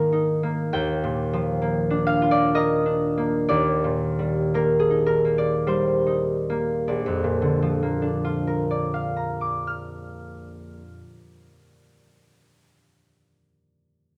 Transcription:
0, 0, Header, 1, 2, 480
1, 0, Start_track
1, 0, Tempo, 884956
1, 401, Time_signature, 3, 2, 24, 8
1, 877, Tempo, 933126
1, 1357, Tempo, 1000000
1, 2317, Tempo, 1119403
1, 2797, Tempo, 1224490
1, 3277, Tempo, 1138520
1, 6345, End_track
2, 0, Start_track
2, 0, Title_t, "Harp"
2, 0, Program_c, 0, 46
2, 0, Note_on_c, 0, 44, 61
2, 0, Note_on_c, 0, 51, 46
2, 0, Note_on_c, 0, 56, 50
2, 0, Note_on_c, 0, 58, 55
2, 0, Note_on_c, 0, 63, 55
2, 0, Note_on_c, 0, 70, 61
2, 0, Note_on_c, 0, 80, 81
2, 0, Note_on_c, 0, 82, 92
2, 0, Note_on_c, 0, 84, 89
2, 61, Note_off_c, 0, 63, 0
2, 68, Note_on_c, 0, 63, 48
2, 228, Note_off_c, 0, 58, 0
2, 234, Note_on_c, 0, 58, 55
2, 395, Note_on_c, 0, 39, 64
2, 397, Note_on_c, 0, 79, 87
2, 417, Note_off_c, 0, 44, 0
2, 418, Note_off_c, 0, 80, 0
2, 419, Note_off_c, 0, 84, 0
2, 421, Note_off_c, 0, 51, 0
2, 421, Note_off_c, 0, 56, 0
2, 563, Note_on_c, 0, 46, 51
2, 599, Note_off_c, 0, 82, 0
2, 723, Note_on_c, 0, 53, 52
2, 871, Note_off_c, 0, 58, 0
2, 877, Note_on_c, 0, 58, 54
2, 1025, Note_on_c, 0, 62, 51
2, 1108, Note_on_c, 0, 77, 87
2, 1186, Note_on_c, 0, 65, 56
2, 1235, Note_on_c, 0, 74, 77
2, 1348, Note_off_c, 0, 70, 0
2, 1355, Note_on_c, 0, 70, 57
2, 1357, Note_on_c, 0, 75, 85
2, 1440, Note_off_c, 0, 74, 0
2, 1499, Note_off_c, 0, 62, 0
2, 1505, Note_on_c, 0, 62, 48
2, 1652, Note_off_c, 0, 58, 0
2, 1657, Note_on_c, 0, 58, 51
2, 1804, Note_off_c, 0, 39, 0
2, 1806, Note_on_c, 0, 74, 78
2, 1810, Note_on_c, 0, 39, 63
2, 1843, Note_off_c, 0, 65, 0
2, 1844, Note_off_c, 0, 77, 0
2, 1846, Note_off_c, 0, 46, 0
2, 1848, Note_off_c, 0, 53, 0
2, 1977, Note_on_c, 0, 46, 48
2, 2065, Note_off_c, 0, 63, 0
2, 2144, Note_on_c, 0, 55, 46
2, 2308, Note_off_c, 0, 58, 0
2, 2310, Note_off_c, 0, 70, 0
2, 2313, Note_on_c, 0, 58, 49
2, 2316, Note_on_c, 0, 70, 73
2, 2352, Note_off_c, 0, 79, 0
2, 2422, Note_on_c, 0, 68, 61
2, 2468, Note_on_c, 0, 63, 46
2, 2532, Note_off_c, 0, 70, 0
2, 2537, Note_on_c, 0, 70, 69
2, 2611, Note_off_c, 0, 58, 0
2, 2616, Note_on_c, 0, 58, 46
2, 2631, Note_off_c, 0, 68, 0
2, 2668, Note_off_c, 0, 74, 0
2, 2673, Note_on_c, 0, 74, 69
2, 2753, Note_off_c, 0, 70, 0
2, 2791, Note_off_c, 0, 55, 0
2, 2796, Note_on_c, 0, 55, 46
2, 2799, Note_on_c, 0, 72, 69
2, 2880, Note_off_c, 0, 74, 0
2, 2948, Note_off_c, 0, 63, 0
2, 2952, Note_on_c, 0, 63, 39
2, 3103, Note_off_c, 0, 75, 0
2, 3117, Note_off_c, 0, 58, 0
2, 3122, Note_on_c, 0, 58, 44
2, 3223, Note_off_c, 0, 62, 0
2, 3270, Note_on_c, 0, 34, 48
2, 3272, Note_on_c, 0, 74, 49
2, 3290, Note_off_c, 0, 39, 0
2, 3293, Note_off_c, 0, 46, 0
2, 3295, Note_off_c, 0, 63, 0
2, 3296, Note_off_c, 0, 55, 0
2, 3297, Note_off_c, 0, 72, 0
2, 3347, Note_on_c, 0, 41, 47
2, 3423, Note_on_c, 0, 46, 49
2, 3498, Note_on_c, 0, 50, 50
2, 3585, Note_on_c, 0, 53, 44
2, 3665, Note_off_c, 0, 58, 0
2, 3670, Note_on_c, 0, 58, 44
2, 3751, Note_on_c, 0, 62, 45
2, 3847, Note_on_c, 0, 65, 46
2, 3943, Note_on_c, 0, 70, 40
2, 4040, Note_off_c, 0, 74, 0
2, 4041, Note_on_c, 0, 74, 43
2, 4139, Note_on_c, 0, 77, 45
2, 4235, Note_on_c, 0, 82, 39
2, 4338, Note_on_c, 0, 86, 38
2, 4448, Note_on_c, 0, 89, 35
2, 4914, Note_off_c, 0, 34, 0
2, 4991, Note_off_c, 0, 41, 0
2, 5029, Note_off_c, 0, 58, 0
2, 5067, Note_off_c, 0, 46, 0
2, 5111, Note_off_c, 0, 62, 0
2, 5142, Note_off_c, 0, 50, 0
2, 5197, Note_off_c, 0, 53, 0
2, 5206, Note_off_c, 0, 65, 0
2, 5302, Note_off_c, 0, 70, 0
2, 5325, Note_off_c, 0, 86, 0
2, 5326, Note_off_c, 0, 82, 0
2, 5327, Note_off_c, 0, 89, 0
2, 5329, Note_off_c, 0, 77, 0
2, 5330, Note_off_c, 0, 74, 0
2, 6345, End_track
0, 0, End_of_file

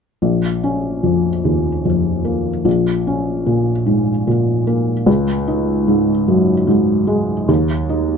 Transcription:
0, 0, Header, 1, 2, 480
1, 0, Start_track
1, 0, Key_signature, -5, "minor"
1, 0, Tempo, 808625
1, 130, Time_signature, 6, 3, 24, 8
1, 4852, End_track
2, 0, Start_track
2, 0, Title_t, "Felt piano"
2, 0, Program_c, 0, 0
2, 131, Note_on_c, 0, 34, 33
2, 238, Control_c, 0, 64, 127
2, 377, Note_on_c, 0, 61, 26
2, 613, Note_on_c, 0, 41, 26
2, 765, Note_off_c, 0, 61, 0
2, 858, Note_on_c, 0, 39, 21
2, 1000, Note_off_c, 0, 41, 0
2, 1098, Note_off_c, 0, 39, 0
2, 1099, Note_on_c, 0, 41, 28
2, 1333, Note_on_c, 0, 58, 24
2, 1482, Note_off_c, 0, 41, 0
2, 1554, Note_off_c, 0, 34, 0
2, 1573, Note_on_c, 0, 34, 38
2, 1575, Note_off_c, 0, 58, 0
2, 1588, Control_c, 0, 64, 0
2, 1692, Control_c, 0, 64, 127
2, 1823, Note_on_c, 0, 61, 27
2, 2056, Note_on_c, 0, 46, 31
2, 2202, Note_off_c, 0, 61, 0
2, 2293, Note_on_c, 0, 44, 26
2, 2438, Note_off_c, 0, 46, 0
2, 2533, Note_off_c, 0, 44, 0
2, 2537, Note_on_c, 0, 46, 32
2, 2772, Note_on_c, 0, 58, 33
2, 2917, Note_off_c, 0, 46, 0
2, 2985, Note_off_c, 0, 34, 0
2, 3006, Note_on_c, 0, 37, 47
2, 3011, Note_off_c, 0, 58, 0
2, 3021, Control_c, 0, 64, 0
2, 3120, Control_c, 0, 64, 127
2, 3251, Note_on_c, 0, 63, 33
2, 3489, Note_on_c, 0, 44, 41
2, 3629, Note_off_c, 0, 63, 0
2, 3728, Note_on_c, 0, 42, 31
2, 3867, Note_off_c, 0, 44, 0
2, 3961, Note_on_c, 0, 44, 37
2, 3963, Note_off_c, 0, 42, 0
2, 4198, Note_on_c, 0, 56, 38
2, 4346, Note_off_c, 0, 44, 0
2, 4416, Note_off_c, 0, 37, 0
2, 4441, Note_off_c, 0, 56, 0
2, 4442, Note_on_c, 0, 39, 45
2, 4453, Control_c, 0, 64, 0
2, 4551, Control_c, 0, 64, 127
2, 4685, Note_on_c, 0, 63, 32
2, 4852, Note_off_c, 0, 39, 0
2, 4852, Note_off_c, 0, 63, 0
2, 4852, End_track
0, 0, End_of_file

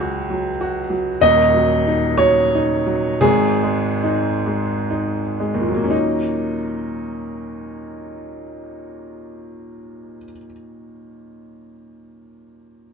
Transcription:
0, 0, Header, 1, 2, 480
1, 0, Start_track
1, 0, Key_signature, -6, "minor"
1, 0, Tempo, 622407
1, 941, Tempo, 649351
1, 942, Time_signature, 6, 3, 24, 8
1, 1901, Tempo, 715990
1, 2381, Tempo, 791557
1, 2861, Tempo, 878477
1, 3341, Tempo, 975610
1, 5741, Tempo, 991736
1, 7266, End_track
2, 0, Start_track
2, 0, Title_t, "Upright piano"
2, 0, Program_c, 0, 0
2, 0, Control_c, 0, 64, 127
2, 0, Note_on_c, 0, 37, 69
2, 0, Note_on_c, 0, 54, 51
2, 0, Note_on_c, 0, 68, 82
2, 5, Note_on_c, 0, 66, 56
2, 135, Note_off_c, 0, 54, 0
2, 233, Note_on_c, 0, 54, 54
2, 377, Note_off_c, 0, 66, 0
2, 469, Note_on_c, 0, 66, 60
2, 609, Note_off_c, 0, 54, 0
2, 693, Note_on_c, 0, 54, 56
2, 699, Note_off_c, 0, 68, 0
2, 849, Note_off_c, 0, 66, 0
2, 913, Note_off_c, 0, 37, 0
2, 931, Note_on_c, 0, 27, 73
2, 937, Note_on_c, 0, 75, 122
2, 938, Note_off_c, 0, 54, 0
2, 946, Note_on_c, 0, 39, 75
2, 957, Control_c, 0, 64, 0
2, 1061, Control_c, 0, 64, 127
2, 1176, Note_on_c, 0, 54, 59
2, 1422, Note_on_c, 0, 63, 61
2, 1557, Note_off_c, 0, 54, 0
2, 1647, Note_on_c, 0, 73, 114
2, 1651, Note_off_c, 0, 75, 0
2, 1656, Note_on_c, 0, 54, 62
2, 1806, Note_off_c, 0, 63, 0
2, 1923, Note_on_c, 0, 63, 62
2, 2043, Note_off_c, 0, 54, 0
2, 2133, Note_on_c, 0, 54, 63
2, 2293, Note_off_c, 0, 63, 0
2, 2351, Note_off_c, 0, 27, 0
2, 2357, Note_off_c, 0, 39, 0
2, 2363, Note_on_c, 0, 68, 103
2, 2364, Note_on_c, 0, 32, 73
2, 2370, Note_on_c, 0, 44, 75
2, 2379, Note_off_c, 0, 73, 0
2, 2380, Note_off_c, 0, 54, 0
2, 2396, Control_c, 0, 64, 0
2, 2501, Control_c, 0, 64, 127
2, 2623, Note_on_c, 0, 56, 58
2, 2867, Note_on_c, 0, 63, 60
2, 3004, Note_off_c, 0, 56, 0
2, 3099, Note_on_c, 0, 56, 52
2, 3243, Note_off_c, 0, 63, 0
2, 3341, Note_on_c, 0, 63, 54
2, 3485, Note_off_c, 0, 56, 0
2, 3576, Note_off_c, 0, 68, 0
2, 3584, Note_on_c, 0, 56, 48
2, 3654, Note_on_c, 0, 39, 60
2, 3688, Note_on_c, 0, 46, 52
2, 3725, Note_on_c, 0, 54, 53
2, 3732, Note_off_c, 0, 63, 0
2, 3762, Note_on_c, 0, 58, 53
2, 3801, Note_on_c, 0, 61, 54
2, 3803, Note_off_c, 0, 32, 0
2, 3806, Note_off_c, 0, 44, 0
2, 3831, Note_off_c, 0, 56, 0
2, 3834, Note_on_c, 0, 63, 66
2, 3843, Control_c, 0, 64, 0
2, 3963, Control_c, 0, 64, 127
2, 5921, Note_off_c, 0, 39, 0
2, 5955, Note_off_c, 0, 46, 0
2, 5991, Note_off_c, 0, 54, 0
2, 6027, Note_off_c, 0, 58, 0
2, 6066, Note_off_c, 0, 61, 0
2, 6098, Note_off_c, 0, 63, 0
2, 7266, End_track
0, 0, End_of_file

